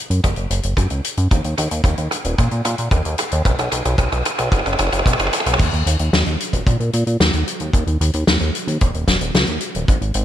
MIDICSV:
0, 0, Header, 1, 3, 480
1, 0, Start_track
1, 0, Key_signature, -6, "minor"
1, 0, Tempo, 535714
1, 1175, Time_signature, 4, 2, 24, 8
1, 9182, End_track
2, 0, Start_track
2, 0, Title_t, "Analog synth bass"
2, 0, Program_c, 0, 38
2, 92, Note_on_c, 0, 42, 81
2, 185, Note_off_c, 0, 42, 0
2, 214, Note_on_c, 0, 30, 99
2, 306, Note_off_c, 0, 30, 0
2, 333, Note_on_c, 0, 30, 75
2, 426, Note_off_c, 0, 30, 0
2, 453, Note_on_c, 0, 30, 96
2, 546, Note_off_c, 0, 30, 0
2, 573, Note_on_c, 0, 30, 84
2, 666, Note_off_c, 0, 30, 0
2, 688, Note_on_c, 0, 42, 98
2, 783, Note_off_c, 0, 42, 0
2, 814, Note_on_c, 0, 37, 79
2, 906, Note_off_c, 0, 37, 0
2, 1054, Note_on_c, 0, 42, 80
2, 1146, Note_off_c, 0, 42, 0
2, 1177, Note_on_c, 0, 39, 101
2, 1267, Note_off_c, 0, 39, 0
2, 1296, Note_on_c, 0, 39, 79
2, 1387, Note_off_c, 0, 39, 0
2, 1414, Note_on_c, 0, 39, 95
2, 1506, Note_off_c, 0, 39, 0
2, 1535, Note_on_c, 0, 39, 83
2, 1626, Note_off_c, 0, 39, 0
2, 1647, Note_on_c, 0, 39, 101
2, 1742, Note_off_c, 0, 39, 0
2, 1774, Note_on_c, 0, 39, 77
2, 1866, Note_off_c, 0, 39, 0
2, 2015, Note_on_c, 0, 27, 80
2, 2106, Note_off_c, 0, 27, 0
2, 2135, Note_on_c, 0, 46, 103
2, 2227, Note_off_c, 0, 46, 0
2, 2255, Note_on_c, 0, 46, 81
2, 2346, Note_off_c, 0, 46, 0
2, 2375, Note_on_c, 0, 46, 97
2, 2467, Note_off_c, 0, 46, 0
2, 2495, Note_on_c, 0, 46, 81
2, 2586, Note_off_c, 0, 46, 0
2, 2609, Note_on_c, 0, 39, 103
2, 2704, Note_off_c, 0, 39, 0
2, 2735, Note_on_c, 0, 39, 80
2, 2826, Note_off_c, 0, 39, 0
2, 2975, Note_on_c, 0, 39, 76
2, 3066, Note_off_c, 0, 39, 0
2, 3093, Note_on_c, 0, 35, 101
2, 3186, Note_off_c, 0, 35, 0
2, 3215, Note_on_c, 0, 35, 77
2, 3307, Note_off_c, 0, 35, 0
2, 3334, Note_on_c, 0, 35, 94
2, 3426, Note_off_c, 0, 35, 0
2, 3455, Note_on_c, 0, 35, 81
2, 3546, Note_off_c, 0, 35, 0
2, 3567, Note_on_c, 0, 35, 107
2, 3662, Note_off_c, 0, 35, 0
2, 3696, Note_on_c, 0, 35, 79
2, 3787, Note_off_c, 0, 35, 0
2, 3935, Note_on_c, 0, 35, 86
2, 4026, Note_off_c, 0, 35, 0
2, 4048, Note_on_c, 0, 30, 102
2, 4143, Note_off_c, 0, 30, 0
2, 4174, Note_on_c, 0, 30, 83
2, 4266, Note_off_c, 0, 30, 0
2, 4294, Note_on_c, 0, 30, 99
2, 4386, Note_off_c, 0, 30, 0
2, 4414, Note_on_c, 0, 30, 81
2, 4506, Note_off_c, 0, 30, 0
2, 4531, Note_on_c, 0, 35, 104
2, 4625, Note_off_c, 0, 35, 0
2, 4655, Note_on_c, 0, 30, 77
2, 4746, Note_off_c, 0, 30, 0
2, 4894, Note_on_c, 0, 35, 76
2, 4986, Note_off_c, 0, 35, 0
2, 5013, Note_on_c, 0, 39, 98
2, 5106, Note_off_c, 0, 39, 0
2, 5134, Note_on_c, 0, 39, 75
2, 5226, Note_off_c, 0, 39, 0
2, 5254, Note_on_c, 0, 39, 92
2, 5346, Note_off_c, 0, 39, 0
2, 5373, Note_on_c, 0, 39, 82
2, 5466, Note_off_c, 0, 39, 0
2, 5493, Note_on_c, 0, 39, 103
2, 5585, Note_off_c, 0, 39, 0
2, 5614, Note_on_c, 0, 39, 78
2, 5706, Note_off_c, 0, 39, 0
2, 5852, Note_on_c, 0, 27, 80
2, 5945, Note_off_c, 0, 27, 0
2, 5973, Note_on_c, 0, 46, 102
2, 6065, Note_off_c, 0, 46, 0
2, 6092, Note_on_c, 0, 46, 81
2, 6185, Note_off_c, 0, 46, 0
2, 6213, Note_on_c, 0, 46, 100
2, 6306, Note_off_c, 0, 46, 0
2, 6332, Note_on_c, 0, 46, 83
2, 6425, Note_off_c, 0, 46, 0
2, 6453, Note_on_c, 0, 39, 104
2, 6546, Note_off_c, 0, 39, 0
2, 6572, Note_on_c, 0, 39, 82
2, 6665, Note_off_c, 0, 39, 0
2, 6813, Note_on_c, 0, 39, 84
2, 6905, Note_off_c, 0, 39, 0
2, 6930, Note_on_c, 0, 39, 100
2, 7024, Note_off_c, 0, 39, 0
2, 7052, Note_on_c, 0, 39, 78
2, 7145, Note_off_c, 0, 39, 0
2, 7171, Note_on_c, 0, 39, 95
2, 7265, Note_off_c, 0, 39, 0
2, 7292, Note_on_c, 0, 39, 81
2, 7385, Note_off_c, 0, 39, 0
2, 7413, Note_on_c, 0, 39, 102
2, 7505, Note_off_c, 0, 39, 0
2, 7532, Note_on_c, 0, 39, 79
2, 7625, Note_off_c, 0, 39, 0
2, 7772, Note_on_c, 0, 39, 84
2, 7865, Note_off_c, 0, 39, 0
2, 7897, Note_on_c, 0, 27, 97
2, 7988, Note_off_c, 0, 27, 0
2, 8012, Note_on_c, 0, 27, 80
2, 8105, Note_off_c, 0, 27, 0
2, 8134, Note_on_c, 0, 27, 98
2, 8226, Note_off_c, 0, 27, 0
2, 8254, Note_on_c, 0, 27, 82
2, 8346, Note_off_c, 0, 27, 0
2, 8373, Note_on_c, 0, 37, 103
2, 8466, Note_off_c, 0, 37, 0
2, 8493, Note_on_c, 0, 39, 79
2, 8586, Note_off_c, 0, 39, 0
2, 8733, Note_on_c, 0, 27, 78
2, 8826, Note_off_c, 0, 27, 0
2, 8855, Note_on_c, 0, 32, 103
2, 8947, Note_off_c, 0, 32, 0
2, 8974, Note_on_c, 0, 32, 77
2, 9066, Note_off_c, 0, 32, 0
2, 9094, Note_on_c, 0, 32, 97
2, 9182, Note_off_c, 0, 32, 0
2, 9182, End_track
3, 0, Start_track
3, 0, Title_t, "Drums"
3, 96, Note_on_c, 9, 42, 64
3, 185, Note_off_c, 9, 42, 0
3, 212, Note_on_c, 9, 47, 70
3, 214, Note_on_c, 9, 42, 64
3, 215, Note_on_c, 9, 36, 97
3, 302, Note_off_c, 9, 47, 0
3, 303, Note_off_c, 9, 42, 0
3, 304, Note_off_c, 9, 36, 0
3, 324, Note_on_c, 9, 42, 43
3, 413, Note_off_c, 9, 42, 0
3, 453, Note_on_c, 9, 42, 98
3, 543, Note_off_c, 9, 42, 0
3, 567, Note_on_c, 9, 42, 67
3, 657, Note_off_c, 9, 42, 0
3, 688, Note_on_c, 9, 36, 87
3, 689, Note_on_c, 9, 47, 74
3, 698, Note_on_c, 9, 42, 69
3, 778, Note_off_c, 9, 36, 0
3, 778, Note_off_c, 9, 47, 0
3, 788, Note_off_c, 9, 42, 0
3, 807, Note_on_c, 9, 42, 52
3, 897, Note_off_c, 9, 42, 0
3, 936, Note_on_c, 9, 42, 112
3, 1026, Note_off_c, 9, 42, 0
3, 1052, Note_on_c, 9, 42, 62
3, 1141, Note_off_c, 9, 42, 0
3, 1173, Note_on_c, 9, 47, 63
3, 1176, Note_on_c, 9, 36, 98
3, 1176, Note_on_c, 9, 42, 68
3, 1262, Note_off_c, 9, 47, 0
3, 1265, Note_off_c, 9, 42, 0
3, 1266, Note_off_c, 9, 36, 0
3, 1292, Note_on_c, 9, 42, 50
3, 1382, Note_off_c, 9, 42, 0
3, 1411, Note_on_c, 9, 47, 73
3, 1416, Note_on_c, 9, 42, 86
3, 1501, Note_off_c, 9, 47, 0
3, 1505, Note_off_c, 9, 42, 0
3, 1533, Note_on_c, 9, 42, 69
3, 1622, Note_off_c, 9, 42, 0
3, 1647, Note_on_c, 9, 36, 105
3, 1652, Note_on_c, 9, 47, 79
3, 1654, Note_on_c, 9, 42, 62
3, 1736, Note_off_c, 9, 36, 0
3, 1741, Note_off_c, 9, 47, 0
3, 1743, Note_off_c, 9, 42, 0
3, 1770, Note_on_c, 9, 42, 49
3, 1860, Note_off_c, 9, 42, 0
3, 1890, Note_on_c, 9, 47, 76
3, 1898, Note_on_c, 9, 42, 93
3, 1979, Note_off_c, 9, 47, 0
3, 1987, Note_off_c, 9, 42, 0
3, 2012, Note_on_c, 9, 42, 69
3, 2101, Note_off_c, 9, 42, 0
3, 2134, Note_on_c, 9, 47, 88
3, 2136, Note_on_c, 9, 36, 106
3, 2141, Note_on_c, 9, 42, 61
3, 2224, Note_off_c, 9, 47, 0
3, 2225, Note_off_c, 9, 36, 0
3, 2231, Note_off_c, 9, 42, 0
3, 2251, Note_on_c, 9, 42, 41
3, 2340, Note_off_c, 9, 42, 0
3, 2372, Note_on_c, 9, 47, 81
3, 2374, Note_on_c, 9, 42, 97
3, 2462, Note_off_c, 9, 47, 0
3, 2463, Note_off_c, 9, 42, 0
3, 2491, Note_on_c, 9, 42, 67
3, 2581, Note_off_c, 9, 42, 0
3, 2609, Note_on_c, 9, 36, 106
3, 2609, Note_on_c, 9, 42, 66
3, 2614, Note_on_c, 9, 47, 80
3, 2699, Note_off_c, 9, 36, 0
3, 2699, Note_off_c, 9, 42, 0
3, 2704, Note_off_c, 9, 47, 0
3, 2733, Note_on_c, 9, 42, 51
3, 2823, Note_off_c, 9, 42, 0
3, 2848, Note_on_c, 9, 42, 102
3, 2855, Note_on_c, 9, 47, 90
3, 2938, Note_off_c, 9, 42, 0
3, 2945, Note_off_c, 9, 47, 0
3, 2971, Note_on_c, 9, 42, 69
3, 3060, Note_off_c, 9, 42, 0
3, 3092, Note_on_c, 9, 42, 62
3, 3093, Note_on_c, 9, 36, 104
3, 3099, Note_on_c, 9, 47, 90
3, 3181, Note_off_c, 9, 42, 0
3, 3183, Note_off_c, 9, 36, 0
3, 3188, Note_off_c, 9, 47, 0
3, 3213, Note_on_c, 9, 42, 51
3, 3218, Note_on_c, 9, 47, 87
3, 3302, Note_off_c, 9, 42, 0
3, 3308, Note_off_c, 9, 47, 0
3, 3329, Note_on_c, 9, 47, 91
3, 3333, Note_on_c, 9, 42, 102
3, 3418, Note_off_c, 9, 47, 0
3, 3422, Note_off_c, 9, 42, 0
3, 3451, Note_on_c, 9, 42, 64
3, 3453, Note_on_c, 9, 47, 80
3, 3541, Note_off_c, 9, 42, 0
3, 3543, Note_off_c, 9, 47, 0
3, 3567, Note_on_c, 9, 36, 105
3, 3568, Note_on_c, 9, 42, 69
3, 3570, Note_on_c, 9, 47, 93
3, 3657, Note_off_c, 9, 36, 0
3, 3657, Note_off_c, 9, 42, 0
3, 3660, Note_off_c, 9, 47, 0
3, 3693, Note_on_c, 9, 47, 92
3, 3695, Note_on_c, 9, 42, 45
3, 3782, Note_off_c, 9, 47, 0
3, 3784, Note_off_c, 9, 42, 0
3, 3810, Note_on_c, 9, 42, 103
3, 3816, Note_on_c, 9, 47, 101
3, 3900, Note_off_c, 9, 42, 0
3, 3905, Note_off_c, 9, 47, 0
3, 3928, Note_on_c, 9, 47, 93
3, 3930, Note_on_c, 9, 42, 65
3, 4018, Note_off_c, 9, 47, 0
3, 4020, Note_off_c, 9, 42, 0
3, 4048, Note_on_c, 9, 36, 102
3, 4051, Note_on_c, 9, 42, 71
3, 4056, Note_on_c, 9, 47, 98
3, 4113, Note_off_c, 9, 47, 0
3, 4113, Note_on_c, 9, 47, 84
3, 4138, Note_off_c, 9, 36, 0
3, 4141, Note_off_c, 9, 42, 0
3, 4174, Note_off_c, 9, 47, 0
3, 4174, Note_on_c, 9, 47, 88
3, 4179, Note_on_c, 9, 42, 42
3, 4236, Note_off_c, 9, 47, 0
3, 4236, Note_on_c, 9, 47, 89
3, 4269, Note_off_c, 9, 42, 0
3, 4287, Note_on_c, 9, 42, 90
3, 4292, Note_off_c, 9, 47, 0
3, 4292, Note_on_c, 9, 47, 106
3, 4359, Note_off_c, 9, 47, 0
3, 4359, Note_on_c, 9, 47, 85
3, 4377, Note_off_c, 9, 42, 0
3, 4411, Note_off_c, 9, 47, 0
3, 4411, Note_on_c, 9, 47, 91
3, 4416, Note_on_c, 9, 42, 63
3, 4471, Note_off_c, 9, 47, 0
3, 4471, Note_on_c, 9, 47, 88
3, 4506, Note_off_c, 9, 42, 0
3, 4531, Note_on_c, 9, 36, 93
3, 4538, Note_off_c, 9, 47, 0
3, 4538, Note_on_c, 9, 47, 96
3, 4542, Note_on_c, 9, 42, 68
3, 4597, Note_off_c, 9, 47, 0
3, 4597, Note_on_c, 9, 47, 96
3, 4621, Note_off_c, 9, 36, 0
3, 4632, Note_off_c, 9, 42, 0
3, 4653, Note_on_c, 9, 42, 46
3, 4655, Note_off_c, 9, 47, 0
3, 4655, Note_on_c, 9, 47, 101
3, 4718, Note_off_c, 9, 47, 0
3, 4718, Note_on_c, 9, 47, 94
3, 4742, Note_off_c, 9, 42, 0
3, 4773, Note_on_c, 9, 42, 99
3, 4777, Note_off_c, 9, 47, 0
3, 4777, Note_on_c, 9, 47, 117
3, 4839, Note_off_c, 9, 47, 0
3, 4839, Note_on_c, 9, 47, 103
3, 4863, Note_off_c, 9, 42, 0
3, 4894, Note_on_c, 9, 42, 72
3, 4898, Note_off_c, 9, 47, 0
3, 4898, Note_on_c, 9, 47, 87
3, 4959, Note_off_c, 9, 47, 0
3, 4959, Note_on_c, 9, 47, 104
3, 4984, Note_off_c, 9, 42, 0
3, 5010, Note_on_c, 9, 49, 105
3, 5014, Note_on_c, 9, 36, 113
3, 5019, Note_on_c, 9, 42, 64
3, 5049, Note_off_c, 9, 47, 0
3, 5100, Note_off_c, 9, 49, 0
3, 5103, Note_off_c, 9, 36, 0
3, 5109, Note_off_c, 9, 42, 0
3, 5137, Note_on_c, 9, 42, 46
3, 5227, Note_off_c, 9, 42, 0
3, 5258, Note_on_c, 9, 42, 108
3, 5348, Note_off_c, 9, 42, 0
3, 5368, Note_on_c, 9, 42, 65
3, 5458, Note_off_c, 9, 42, 0
3, 5495, Note_on_c, 9, 38, 109
3, 5496, Note_on_c, 9, 42, 62
3, 5584, Note_off_c, 9, 38, 0
3, 5585, Note_off_c, 9, 42, 0
3, 5610, Note_on_c, 9, 42, 48
3, 5699, Note_off_c, 9, 42, 0
3, 5738, Note_on_c, 9, 42, 96
3, 5828, Note_off_c, 9, 42, 0
3, 5852, Note_on_c, 9, 36, 63
3, 5853, Note_on_c, 9, 42, 73
3, 5942, Note_off_c, 9, 36, 0
3, 5943, Note_off_c, 9, 42, 0
3, 5973, Note_on_c, 9, 36, 121
3, 5977, Note_on_c, 9, 42, 71
3, 6062, Note_off_c, 9, 36, 0
3, 6067, Note_off_c, 9, 42, 0
3, 6096, Note_on_c, 9, 42, 42
3, 6186, Note_off_c, 9, 42, 0
3, 6212, Note_on_c, 9, 42, 97
3, 6302, Note_off_c, 9, 42, 0
3, 6334, Note_on_c, 9, 42, 66
3, 6424, Note_off_c, 9, 42, 0
3, 6456, Note_on_c, 9, 38, 127
3, 6456, Note_on_c, 9, 42, 69
3, 6545, Note_off_c, 9, 38, 0
3, 6546, Note_off_c, 9, 42, 0
3, 6574, Note_on_c, 9, 42, 50
3, 6663, Note_off_c, 9, 42, 0
3, 6698, Note_on_c, 9, 42, 104
3, 6788, Note_off_c, 9, 42, 0
3, 6808, Note_on_c, 9, 42, 58
3, 6898, Note_off_c, 9, 42, 0
3, 6930, Note_on_c, 9, 36, 114
3, 6937, Note_on_c, 9, 42, 68
3, 7020, Note_off_c, 9, 36, 0
3, 7026, Note_off_c, 9, 42, 0
3, 7055, Note_on_c, 9, 42, 46
3, 7145, Note_off_c, 9, 42, 0
3, 7179, Note_on_c, 9, 42, 97
3, 7268, Note_off_c, 9, 42, 0
3, 7289, Note_on_c, 9, 42, 73
3, 7379, Note_off_c, 9, 42, 0
3, 7413, Note_on_c, 9, 38, 127
3, 7415, Note_on_c, 9, 42, 70
3, 7503, Note_off_c, 9, 38, 0
3, 7505, Note_off_c, 9, 42, 0
3, 7535, Note_on_c, 9, 42, 45
3, 7625, Note_off_c, 9, 42, 0
3, 7660, Note_on_c, 9, 42, 106
3, 7749, Note_off_c, 9, 42, 0
3, 7776, Note_on_c, 9, 42, 71
3, 7866, Note_off_c, 9, 42, 0
3, 7892, Note_on_c, 9, 42, 69
3, 7898, Note_on_c, 9, 36, 123
3, 7982, Note_off_c, 9, 42, 0
3, 7987, Note_off_c, 9, 36, 0
3, 8015, Note_on_c, 9, 42, 45
3, 8104, Note_off_c, 9, 42, 0
3, 8132, Note_on_c, 9, 38, 72
3, 8133, Note_on_c, 9, 36, 61
3, 8133, Note_on_c, 9, 42, 95
3, 8222, Note_off_c, 9, 38, 0
3, 8223, Note_off_c, 9, 36, 0
3, 8223, Note_off_c, 9, 42, 0
3, 8251, Note_on_c, 9, 42, 66
3, 8341, Note_off_c, 9, 42, 0
3, 8373, Note_on_c, 9, 42, 66
3, 8378, Note_on_c, 9, 38, 122
3, 8463, Note_off_c, 9, 42, 0
3, 8468, Note_off_c, 9, 38, 0
3, 8484, Note_on_c, 9, 42, 50
3, 8573, Note_off_c, 9, 42, 0
3, 8607, Note_on_c, 9, 42, 101
3, 8696, Note_off_c, 9, 42, 0
3, 8734, Note_on_c, 9, 42, 65
3, 8823, Note_off_c, 9, 42, 0
3, 8855, Note_on_c, 9, 36, 124
3, 8862, Note_on_c, 9, 42, 69
3, 8945, Note_off_c, 9, 36, 0
3, 8952, Note_off_c, 9, 42, 0
3, 8976, Note_on_c, 9, 42, 46
3, 9065, Note_off_c, 9, 42, 0
3, 9086, Note_on_c, 9, 42, 96
3, 9175, Note_off_c, 9, 42, 0
3, 9182, End_track
0, 0, End_of_file